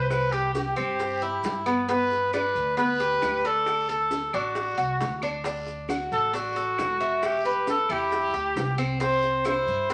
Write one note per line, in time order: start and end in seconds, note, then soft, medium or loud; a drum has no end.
0.00 0.71 C2 medium
0.00 0.32 C5 medium
0.09 0.34 B4 medium
0.09 high bongo medium
0.09 long guiro medium
0.09 claves medium
0.09 maracas medium
0.32 0.76 G4 medium
0.32 0.53 G4 medium
0.32 high bongo soft
0.32 maracas soft
0.54 1.62 G4 medium
0.54 high bongo medium
0.54 short guiro medium
0.54 maracas medium
0.76 1.40 G2 medium
0.76 1.20 C4 medium
0.76 short guiro medium
0.76 claves medium
0.76 maracas soft
0.99 high bongo medium
0.99 long guiro medium
0.99 maracas medium
1.22 1.65 E4 medium
1.22 maracas soft
1.43 2.49 G2 medium
1.43 high bongo medium
1.43 low bongo medium
1.43 short guiro medium
1.43 maracas medium
1.66 1.87 B3 medium
1.66 high bongo soft
1.66 short guiro medium
1.66 claves medium
1.66 maracas soft
1.89 2.32 B3 medium
1.89 2.31 B4 loud
1.89 high bongo medium
1.89 long guiro medium
1.89 maracas medium
2.11 high bongo soft
2.11 maracas soft
2.33 2.76 D4 medium
2.33 2.75 B4 medium
2.33 high bongo medium
2.33 short guiro medium
2.33 claves medium
2.33 maracas medium
2.55 3.18 D2 medium
2.55 short guiro medium
2.55 maracas soft
2.77 2.99 B3 medium
2.77 3.47 B4 loud
2.77 high bongo medium
2.77 long guiro medium
2.77 maracas medium
3.00 3.43 G4 medium
3.00 high bongo soft
3.00 maracas soft
3.22 4.27 D2 medium
3.22 high bongo medium
3.22 low bongo medium
3.22 short guiro medium
3.22 claves medium
3.22 maracas medium
3.44 3.90 A4 medium
3.44 3.88 D5 medium
3.44 high bongo soft
3.44 short guiro medium
3.44 maracas soft
3.66 high bongo medium
3.66 long guiro medium
3.66 claves medium
3.66 maracas medium
3.89 4.32 A4 medium
3.89 4.36 A4 medium
3.89 high bongo soft
3.89 maracas soft
4.11 high bongo medium
4.11 short guiro medium
4.11 maracas medium
4.33 4.75 A1 medium
4.33 4.77 D4 medium
4.33 5.23 F#4 medium
4.33 short guiro medium
4.33 claves medium
4.33 maracas soft
4.55 high bongo medium
4.55 long guiro medium
4.55 maracas medium
4.78 4.99 C2 medium
4.78 5.21 F#4 medium
4.78 maracas soft
5.00 6.05 D2 medium
5.00 high bongo medium
5.00 low bongo medium
5.00 short guiro medium
5.00 maracas medium
5.22 5.44 D4 medium
5.22 high bongo soft
5.22 short guiro medium
5.22 claves medium
5.22 maracas soft
5.44 5.88 D4 medium
5.44 high bongo medium
5.44 long guiro medium
5.44 maracas medium
5.66 high bongo soft
5.66 maracas soft
5.89 6.32 F#4 medium
5.89 high bongo medium
5.89 short guiro medium
5.89 claves medium
5.89 maracas medium
6.12 6.74 A1 medium
6.12 6.33 A4 medium
6.12 short guiro medium
6.12 maracas soft
6.33 6.55 D4 medium
6.33 7.27 F#4 medium
6.33 high bongo medium
6.33 long guiro medium
6.33 maracas medium
6.56 6.99 A4 medium
6.56 high bongo soft
6.56 maracas soft
6.78 7.83 E1 medium
6.78 high bongo medium
6.78 low bongo medium
6.78 short guiro medium
6.78 claves medium
6.78 maracas medium
7.00 7.44 E5 medium
7.00 high bongo soft
7.00 short guiro medium
7.00 maracas soft
7.23 7.68 G4 medium
7.23 high bongo medium
7.23 long guiro medium
7.23 claves medium
7.23 maracas medium
7.45 7.88 B4 medium
7.45 high bongo soft
7.45 maracas soft
7.67 7.94 A4 medium
7.67 high bongo medium
7.67 short guiro medium
7.67 maracas medium
7.89 8.31 E2 medium
7.89 8.33 E4 medium
7.89 8.80 G4 medium
7.89 short guiro medium
7.89 claves medium
7.89 maracas soft
8.12 high bongo medium
8.12 long guiro medium
8.12 maracas medium
8.33 8.54 D2 medium
8.33 8.77 G4 medium
8.33 maracas soft
8.56 9.61 C2 medium
8.56 high bongo medium
8.56 low bongo medium
8.56 short guiro medium
8.56 maracas medium
8.78 8.99 C4 medium
8.78 high bongo soft
8.78 short guiro medium
8.78 claves medium
8.78 maracas soft
9.00 9.43 C4 medium
9.00 9.43 C5 loud
9.00 high bongo medium
9.00 long guiro medium
9.00 maracas medium
9.22 high bongo soft
9.22 maracas soft
9.45 9.88 E4 medium
9.45 9.88 C5 medium
9.45 high bongo medium
9.45 short guiro medium
9.45 claves medium
9.45 maracas medium
9.66 9.94 G2 medium
9.66 short guiro medium
9.66 maracas soft
9.90 9.94 C4 medium
9.90 high bongo medium
9.90 maracas medium